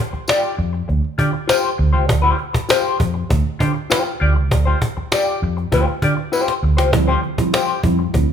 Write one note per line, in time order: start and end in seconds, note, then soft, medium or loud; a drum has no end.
0.13 muted hollow-body jazz guitar stroke medium
0.13 muted fingered electric bass stroke medium
0.13 cajon slap soft
0.28 0.56 F4 medium
0.28 0.57 G4 medium
0.28 0.57 D5 loud
0.28 cajon slap loud
0.28 tambourine medium
0.45 cajon slap soft
0.57 0.81 F2 loud
0.57 muted hollow-body jazz guitar stroke soft
0.57 cajon slap soft
0.73 muted hollow-body jazz guitar stroke soft
0.73 cajon slap soft
0.88 1.00 D2 loud
0.88 muted hollow-body jazz guitar stroke soft
0.88 cajon slap medium
1.04 cajon slap soft
1.18 1.30 D3 medium
1.18 1.34 F4 medium
1.18 1.33 G4 medium
1.18 1.33 D5 medium
1.18 cajon bass medium
1.33 muted hollow-body jazz guitar stroke soft
1.33 cajon slap soft
1.48 1.68 F4 medium
1.48 1.69 G4 loud
1.48 1.69 C5 loud
1.48 cajon slap loud
1.48 tambourine loud
1.64 cajon slap soft
1.78 1.95 D2 loud
1.78 muted hollow-body jazz guitar stroke soft
1.93 2.09 C#2 medium
1.93 2.06 F4 medium
1.93 2.07 G4 medium
1.93 2.07 C5 medium
1.93 cajon slap soft
2.08 2.32 D2 loud
2.08 muted hollow-body jazz guitar stroke soft
2.08 cajon bass loud
2.22 2.37 F4 medium
2.22 2.38 G4 medium
2.22 2.38 C5 medium
2.22 cajon slap soft
2.38 muted hollow-body jazz guitar stroke soft
2.38 cajon slap soft
2.53 muted hollow-body jazz guitar stroke soft
2.53 muted fingered electric bass stroke soft
2.53 cajon bass loud
2.53 cajon slap soft
2.69 2.97 F4 medium
2.69 2.98 G4 medium
2.69 2.98 C5 loud
2.69 cajon slap loud
2.69 tambourine medium
2.85 cajon slap soft
2.99 3.22 F2 loud
2.99 muted hollow-body jazz guitar stroke soft
2.99 cajon bass medium
3.14 muted hollow-body jazz guitar stroke medium
3.14 cajon slap soft
3.29 3.42 D2 medium
3.29 muted hollow-body jazz guitar stroke soft
3.29 cajon bass loud
3.29 cajon slap medium
3.46 cajon slap soft
3.59 3.72 D3 loud
3.59 3.76 F4 medium
3.59 3.74 G4 medium
3.59 3.73 C5 medium
3.59 cajon bass medium
3.74 muted hollow-body jazz guitar stroke medium
3.74 cajon slap soft
3.90 4.11 F4 loud
3.90 4.05 G4 loud
3.90 4.04 C5 loud
3.90 cajon slap loud
3.90 tambourine loud
4.05 muted hollow-body jazz guitar stroke soft
4.05 cajon slap soft
4.20 4.36 D2 loud
4.20 4.36 F4 medium
4.20 4.36 G4 medium
4.20 4.36 D5 medium
4.36 4.51 C#2 loud
4.36 muted hollow-body jazz guitar stroke medium
4.36 cajon slap soft
4.51 4.74 D2 loud
4.51 muted hollow-body jazz guitar stroke soft
4.51 cajon bass loud
4.65 4.80 F4 medium
4.65 4.80 G4 medium
4.65 4.81 C5 medium
4.65 cajon slap soft
4.81 muted hollow-body jazz guitar stroke medium
4.81 cajon bass loud
4.97 muted hollow-body jazz guitar stroke medium
4.97 muted fingered electric bass stroke soft
4.97 cajon slap soft
5.12 5.40 F4 medium
5.12 5.40 G4 medium
5.12 5.40 D5 medium
5.12 cajon slap loud
5.12 tambourine loud
5.27 cajon slap soft
5.42 5.65 F2 loud
5.42 muted hollow-body jazz guitar stroke soft
5.42 cajon slap soft
5.57 muted hollow-body jazz guitar stroke medium
5.57 cajon slap soft
5.72 5.84 D2 medium
5.72 5.92 F4 medium
5.72 5.88 G4 medium
5.72 5.87 C5 loud
5.72 cajon bass loud
5.72 cajon slap medium
5.88 muted hollow-body jazz guitar stroke soft
5.88 cajon slap soft
6.02 6.14 D3 loud
6.02 6.18 F4 medium
6.02 6.16 G4 medium
6.02 6.16 D5 medium
6.02 cajon bass medium
6.17 muted hollow-body jazz guitar stroke soft
6.17 cajon slap soft
6.32 6.52 F4 medium
6.32 6.53 G4 medium
6.32 6.53 C5 medium
6.32 cajon slap soft
6.32 tambourine loud
6.48 cajon slap medium
6.63 6.78 D2 medium
6.63 muted hollow-body jazz guitar stroke soft
6.77 6.93 C#2 medium
6.77 6.91 F4 medium
6.77 6.92 G4 medium
6.77 6.92 C5 medium
6.77 cajon slap medium
6.92 7.15 D2 loud
6.92 7.06 F3 medium
6.92 7.07 G3 medium
6.92 7.07 C4 medium
6.92 7.07 E4 loud
6.92 muted hollow-body jazz guitar stroke soft
6.92 cajon bass loud
7.07 7.21 F4 medium
7.07 7.22 G4 medium
7.07 7.22 C5 medium
7.07 cajon slap soft
7.22 7.37 D3 medium
7.22 muted hollow-body jazz guitar stroke soft
7.22 cajon slap soft
7.38 7.52 F3 medium
7.38 7.52 G3 medium
7.38 7.52 C4 medium
7.38 7.52 E4 medium
7.38 muted hollow-body jazz guitar stroke soft
7.38 muted fingered electric bass stroke soft
7.38 cajon bass loud
7.38 cajon slap soft
7.53 7.81 F4 medium
7.53 7.82 G4 medium
7.53 7.82 C5 medium
7.53 cajon slap loud
7.53 tambourine medium
7.69 cajon slap soft
7.83 8.06 F2 loud
7.83 7.97 F3 medium
7.83 7.98 G3 medium
7.83 7.98 C4 medium
7.83 7.98 E4 loud
7.83 muted hollow-body jazz guitar stroke soft
7.83 cajon bass medium
7.99 muted hollow-body jazz guitar stroke soft
7.99 cajon slap soft
8.14 8.25 D2 medium
8.14 8.28 C4 medium
8.14 8.28 E4 medium
8.14 muted hollow-body jazz guitar stroke medium
8.14 cajon bass loud
8.14 cajon slap medium
8.29 8.33 D3 medium
8.29 cajon slap soft